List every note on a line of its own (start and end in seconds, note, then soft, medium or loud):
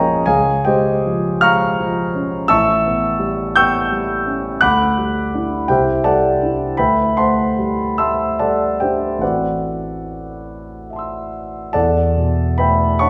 0.00 0.24 A#1 soft
0.00 0.29 F3 soft
0.00 0.30 G#3 soft
0.00 0.27 C#4 soft
0.00 0.27 G#4 medium
0.00 0.30 A#4 medium
0.00 0.27 C#5 medium
0.00 0.30 D#5 medium
0.00 0.27 F5 medium
0.00 0.30 G5 medium
0.00 0.26 G#5 medium
0.00 0.30 A#5 medium
0.00 0.29 C#6 medium
0.26 2.46 C#2 medium
0.26 0.63 G#4 medium
0.26 0.63 C#5 medium
0.26 0.63 F5 medium
0.26 0.65 G#5 medium
0.65 1.28 G#3 soft
0.65 1.39 G4 medium
0.65 1.39 C5 medium
0.65 1.39 D#5 medium
0.65 1.42 G5 medium
1.06 1.65 F3 soft
1.41 2.01 G#3 soft
1.41 2.46 F5 medium
1.41 2.46 A#5 medium
1.41 2.46 C#6 medium
1.41 2.49 F6 medium
1.79 2.36 F3 soft
2.15 2.50 C#4 soft
2.48 4.58 A1 medium
2.48 3.52 E5 medium
2.48 3.51 A5 medium
2.48 3.52 C#6 medium
2.48 3.55 E6 medium
2.86 3.42 B3 soft
3.19 3.76 G3 soft
3.56 4.13 B3 soft
3.56 4.58 G5 medium
3.56 4.58 C#6 medium
3.56 4.58 E6 medium
3.56 4.62 G6 medium
3.92 4.48 G3 soft
4.26 4.62 C#4 soft
4.61 5.67 D2 soft
4.61 5.65 F#5 medium
4.61 5.65 B5 medium
4.61 5.65 D6 medium
4.61 5.69 F#6 medium
4.98 5.55 G3 soft
5.34 5.66 D4 soft
5.34 5.67 E4 soft
5.68 6.75 C2 soft
5.68 6.03 G4 medium
5.68 6.02 C5 medium
5.68 6.03 E5 medium
5.68 6.05 G5 medium
6.04 6.64 G3 soft
6.04 6.74 A4 medium
6.04 6.74 D5 medium
6.04 6.75 F#5 medium
6.04 6.78 A5 medium
6.42 6.75 D4 soft
6.42 6.76 E4 soft
6.77 9.18 D2 soft
6.77 7.15 B4 medium
6.77 7.15 E5 medium
6.77 7.14 G5 medium
6.77 7.17 B5 medium
7.17 7.82 A3 soft
7.17 7.93 C5 medium
7.17 7.93 F#5 medium
7.17 7.93 A5 soft
7.17 7.97 C6 medium
7.59 8.22 G3 soft
7.98 8.64 A3 soft
7.98 8.36 E5 medium
7.98 8.36 A5 medium
7.98 8.36 C6 medium
7.98 8.38 E6 medium
8.39 9.06 G3 soft
8.39 8.78 A4 soft
8.39 8.77 D5 medium
8.39 8.77 F#5 medium
8.39 8.80 A5 medium
8.80 9.23 D4 soft
8.80 9.20 G4 soft
8.80 9.19 C5 soft
8.80 9.19 E5 soft
8.80 9.22 G5 medium
9.18 11.68 A1 soft
9.18 11.69 E3 soft
9.18 11.69 A3 soft
9.18 11.70 C4 soft
9.18 11.31 F#5 medium
9.23 11.70 E4 soft
9.23 11.28 F#4 soft
9.23 11.28 B4 soft
9.23 11.28 D5 soft
10.90 11.70 E5 soft
10.90 11.71 A5 soft
10.96 11.73 C6 soft
10.96 11.75 E6 soft
11.73 13.10 E2 soft
11.73 12.55 A4 medium
11.73 12.55 D5 medium
11.73 12.55 F#5 medium
11.73 12.58 A5 medium
12.16 12.83 B2 soft
12.58 13.10 A3 soft
12.58 12.97 B4 soft
12.58 12.97 E5 medium
12.58 12.98 G5 medium
12.58 12.99 B5 medium
12.99 13.10 D4 soft
12.99 13.10 C#5 medium
12.99 13.10 F#5 medium
12.99 13.10 A5 medium
12.99 13.10 C#6 medium